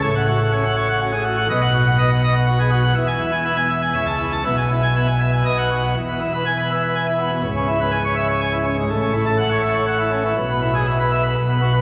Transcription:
<<
  \new Staff \with { instrumentName = "Pipe organ" } { \time 3/4 \key e \major \tempo 4 = 122 << { cis''16 fis''16 fis'16 fis''16 cis''16 fis''16 cis''16 fis''16 fis'16 gis'16 fis'16 fis''16 | dis''16 fis''16 fis'16 fis''16 dis''16 fis''16 dis''16 fis''16 fis'16 gis'16 fis'16 fis''16 | e''16 gis''16 e'16 gis''16 e''16 gis''16 e''16 gis''16 e''16 a''16 e'16 a''16 | e''16 gis''16 e'16 gis''16 e''16 gis''16 e''16 gis''16 dis''16 fis''16 fis'16 fis''16 |
r4 gis''16 r4. r16 | r4 gis''16 r4. r16 | r4 fis''16 r4. r16 | r4 e''16 r4. b'16 | } \\ { a,4 cis'16 r8. cis'16 r8. | b,4 b16 r8. b16 r8. | e,4 b16 r8. cis4 | b,4 b16 r8. b,4 |
e,16 b16 e'16 b'16 r16 b'16 e''16 b'16 gis''16 e'16 b16 b,16 | cis,16 cis'16 e'16 b'16 r16 cis''16 e''16 cis''16 gis''16 e'16 cis'16 gis,16 | a,16 cis'16 e'16 a'16 r16 cis''16 e''16 cis''16 fis''16 e'16 cis'16 e16 | b,16 b16 e'16 gis'16 r16 b'16 e''16 b'16 b,16 b16 fis'16 r16 | } >> }
  \new Staff \with { instrumentName = "Pipe organ" } { \clef bass \time 3/4 \key e \major a,,2. | b,,2. | e,,2 cis,4 | b,,2 b,,4 |
e,,2. | cis,,2. | a,,2. | b,,2 b,,4 | }
>>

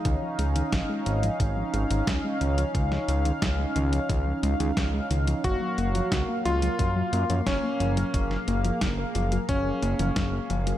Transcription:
<<
  \new Staff \with { instrumentName = "Electric grand piano" } { \time 4/4 \key des \major \tempo 4 = 89 r1 | r1 | ges'4. f'4. des'4~ | des'8 r4. des'2 | }
  \new Staff \with { instrumentName = "Analog synth pad" } { \time 4/4 \key des \major << { <ees' f''>1~ | <ees' f''>1 | ges1 | aes'1 | } \\ { des'1~ | des'1 | bes1~ | bes1 | } >> }
  \new Staff \with { instrumentName = "Synth arpeggio sound" } { \clef bass \time 4/4 \key des \major ees16 f16 aes16 ees16 f16 aes16 ees16 f16 ees16 f16 aes16 ees16 f16 aes16 ees16 f16 | ees16 f16 aes16 ees16 f16 aes16 ees16 f16 ees16 f16 aes16 ees16 f16 aes16 ees16 f16 | f16 ges16 bes16 f16 ges16 bes16 f16 ges16 f16 ges16 bes16 f16 ges16 bes16 f16 ges16 | f16 ges16 bes16 f16 ges16 bes16 f16 ges16 f16 ges16 bes16 f16 ges16 bes16 f16 ges16 | }
  \new Staff \with { instrumentName = "Analog synth bass" } { \clef bass \time 4/4 \key des \major des,16 r16 des,16 r16 aes,,16 r16 aes,,16 r16 aes,,16 r16 aes,,16 aes,,16 des,16 r16 des,16 r16 | des,16 r16 des,16 r16 des,16 r16 des,16 r16 des,16 r16 des,16 des,16 des,16 r16 des,16 r16 | ges,,16 r16 ges,,16 r16 des,16 r16 des,16 r16 ges,16 r16 ges,16 ges,16 ges,,16 r16 ges,,16 r16 | ges,,16 r16 ges,,16 r16 ges,,16 r16 ges,,16 r16 ges,,16 r16 ges,,16 ges,,16 ges,,16 r16 ges,,16 r16 | }
  \new DrumStaff \with { instrumentName = "Drums" } \drummode { \time 4/4 <hh bd>8 hh16 hh16 <hh bd sn>8 hh16 hh16 <hh bd>8 hh16 hh16 <hh bd sn>8 hh16 hh16 | <hh bd>16 sn16 hh16 hh16 <hh bd sn>8 hh16 hh16 <hh bd>8 hh16 hh16 <hh bd sn>8 hh16 hh16 | <hh bd>8 hh16 hh16 <hh bd sn>8 hh16 hh16 <hh bd>8 hh16 hh16 <hh bd sn>8 hh16 hh16 | <hh bd>16 sn16 hh16 hh16 <hh bd sn>8 hh16 hh16 <hh bd>8 hh16 hh16 <hh bd sn>8 hh16 hh16 | }
>>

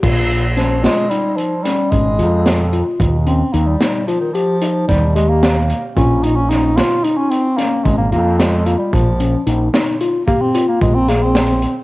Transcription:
<<
  \new Staff \with { instrumentName = "Tine electric piano" } { \time 11/8 \key bes \dorian \tempo 4 = 111 f'4 des'8 f'8 ees'4 des'4 f'4 f'8~ | f'8 des'8 ees'8 ees'8 f'8 g'8 ees'4 g'4 r8 | f'4 des'8 f'8 ees'4 des'4 f'4 f'8~ | f'8 des'8 ees'8 ees'8 f'8 g'8 f'4 aes'4 r8 | }
  \new Staff \with { instrumentName = "Bass clarinet" } { \time 11/8 \key bes \dorian r4 f8 aes8 g8 f8 g8 aes4. r8 | r8 c'8 bes16 g8. f16 ees16 f4 g8 aes16 bes4 r16 | des'8 ees'16 des'16 ees'8 f'8 ees'16 des'16 c'8 bes8 aes16 bes16 bes8 aes8 bes16 g16 | f4 r4. bes16 c'8 bes16 aes16 c'16 bes16 c'4 r16 | }
  \new Staff \with { instrumentName = "Fingered electric bass" } { \clef bass \time 11/8 \key bes \dorian bes,,2 r4. aes,,8 f,4. | ees,4 ees,8 r2 ees,2 | bes,,2 r4. aes,,8 f,4. | bes,,4 bes,,8 r2 bes,,2 | }
  \new DrumStaff \with { instrumentName = "Drums" } \drummode { \time 11/8 <cymc bd>8 hh8 <hh sn>8 <hh sn>8 hh8 hh8 <hh sn>8 <hh bd>8 hh8 <hh sn>8 hh8 | <hh bd>8 hh8 hh8 <hh sn>8 hh8 hh8 hh8 <hh bd sn>8 hh8 <hh sn>8 hh8 | <hh bd>8 hh8 <hh sn>8 <hh sn>8 hh8 hh8 <hh sn>8 <hh bd>8 hh8 <hh sn>8 hh8 | <hh bd>8 hh8 hh8 <hh sn>8 hh8 <hh bd>8 hh8 <hh bd>8 <hh sn>8 <hh sn>8 hh8 | }
>>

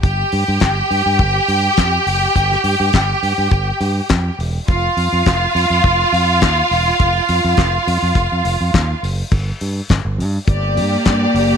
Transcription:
<<
  \new Staff \with { instrumentName = "String section" } { \time 4/4 \key g \minor \tempo 4 = 104 <g' g''>1~ | <g' g''>2.~ <g' g''>8 r8 | <f' f''>1~ | <f' f''>2.~ <f' f''>8 r8 |
r2 <bes g' d''>2 | }
  \new Staff \with { instrumentName = "Fingered electric bass" } { \clef bass \time 4/4 \key g \minor g,,8 g,16 g,16 g,,8 g,16 g,16 g,,8 g,8 f,8 fis,,8 | g,,8 g,16 g,16 g,,8 g,16 g,16 g,,8 g,8 f,8 e,,8 | f,,8 f,16 f,16 f,,8 f,16 f,16 f,,8 f,8 ees,8 e,,8 | f,,8 f,16 f,16 f,,8 f,16 f,16 f,,16 f,16 f,,16 f,16 ees,8 ges,,8 |
g,,8 g,8 g,,16 g,,16 g,8 g,,8 g,8 g,8 fis,,8 | }
  \new DrumStaff \with { instrumentName = "Drums" } \drummode { \time 4/4 <hh bd>8 hho8 <hc hh bd sn>8 hho8 <hh bd>8 hho8 <hc hh bd sn>8 hho8 | <hh bd>16 sn16 hho8 <hc hh bd sn>8 hho8 <hh bd>8 hho8 <hc hh bd sn>8 hho8 | <hh bd>8 hho8 <hc hh bd sn>8 hho8 <hh bd>8 hho8 <hc hh bd sn>8 hho8 | <hh bd>8 hho8 <hc hh bd sn>8 hho8 <hh bd>8 hho8 <hc hh bd sn>8 hho8 |
<cymc bd>8 hho8 <hc hh bd sn>8 hho8 <hh bd>8 hho8 <hc hh bd sn>8 hho8 | }
>>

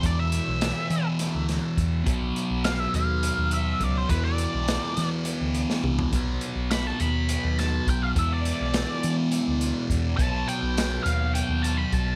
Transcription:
<<
  \new Staff \with { instrumentName = "Lead electric guitar" } { \time 7/8 \key e \minor \tempo 4 = 104 d''16 e''4. r4. r16 | r4 f''16 e''16 f''4 e''8 d''16 c''16 | b'16 d''4. r4. r16 | r4 b''16 a''16 b''4 a''8 g''16 f''16 |
e''16 d''4. r4. r16 | a''8 g''4 f''8 g''8 a''16 b''16 a''8 | }
  \new Staff \with { instrumentName = "Distorted electric guitar" } { \clef bass \time 7/8 \key e \minor <e, b, e>2.~ <e, b, e>8 | <b, fis b>2.~ <b, fis b>8 | <e, b, e>2.~ <e, b, e>8 | <b, fis b>2.~ <b, fis b>8 |
<e, b, e>2.~ <e, b, e>8 | <b, fis b>2.~ <b, fis b>8 | }
  \new Staff \with { instrumentName = "Picked electric bass" } { \clef bass \time 7/8 \key e \minor e,8. b,,8 r16 e8. d,8 r16 e,8 | b,,8 r16 b,,8. dis,8. dis,8. cis,8 | e,8. b,,8 r16 e8. d,8 r16 c,8 | b,,8 r16 b,,8. dis,8. dis,8. b,,8 |
e,8. b,,8 r16 e8. d,8 r16 e,8 | b,,8 r16 b,,8. dis,8. dis,8. b,,8 | }
  \new DrumStaff \with { instrumentName = "Drums" } \drummode { \time 7/8 <hh bd>8 hh8 <hh sn>8 hh8 <hh sn>8 <hh sn>8 <hh bd>8 | <hh bd>8 hh8 <hh sn>8 hh8 hh8 hh8 <hh bd>8 | <hh bd>8 hh8 <hh sn>8 <hh sn>8 hh8 hh16 sn16 toml16 tomfh16 | <hh bd>8 hh8 <hh sn>8 hh8 hh8 <hh sn>8 <hh bd>8 |
<hh bd>8 hh8 <hh sn>8 hh8 hh8 hh8 <hh bd>8 | <hh bd>8 hh8 <hh sn>8 hh8 hh8 hh8 <hh bd>8 | }
>>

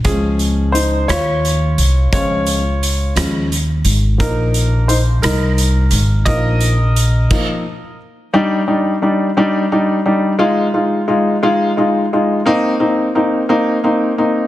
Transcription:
<<
  \new Staff \with { instrumentName = "Grand piano" } { \time 6/8 \key ees \major \tempo 4. = 58 <des' aes'>4 <ees' c''>8 <f' des''>4. | <f' des''>4. r4. | <ees' bes'>4 <ees' c''>8 <ees' bes'>4. | <bes' ees''>2~ <bes' ees''>8 r8 |
<g d' ees'>8 <g d' ees'>8 <g d' ees'>8 <g d' ees'>8 <g d' ees'>8 <g d' ees'>8 | <aes ees' f'>8 <aes ees' f'>8 <aes ees' f'>8 <aes ees' f'>8 <aes ees' f'>8 <aes ees' f'>8 | <bes c' ees'>8 <bes c' ees'>8 <bes c' ees'>8 <bes c' ees'>8 <bes c' ees'>8 <bes c' ees'>8 | }
  \new Staff \with { instrumentName = "Grand piano" } { \clef bass \time 6/8 \key ees \major <f aes>4. r4. | <f aes des'>8 r4 <f aes des'>8 r4 | <f bes>2. | <f bes ees'>8 r4 <f bes ees'>8 r4 |
r2. | r2. | r2. | }
  \new Staff \with { instrumentName = "Upright bass" } { \clef bass \time 6/8 \key ees \major des,4. ees,4 c,8 | des,4. ees,4 aes,,8 | bes,,4. c,4 aes,,8 | bes,,4. r4. |
r2. | r2. | r2. | }
  \new DrumStaff \with { instrumentName = "Drums" } \drummode { \time 6/8 <hh bd>8 hh8 hh8 <hh ss>8 hh8 hh8 | <hh bd>8 hh8 hh8 <hh ss>8 hh8 hh8 | <hh bd>8 hh8 hh8 <hh ss>8 hh8 hh8 | <hh bd>8 hh8 hh8 <cymc bd>4. |
r4. r4. | r4. r4. | r4. r4. | }
>>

